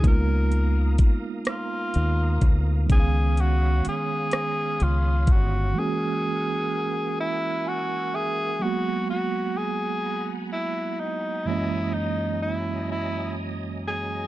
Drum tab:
HH |xxxxxx|xxxxxx|------|------|
SD |---r--|---r--|------|------|
BD |o-o--o|o----o|------|------|

HH |------|
SD |------|
BD |------|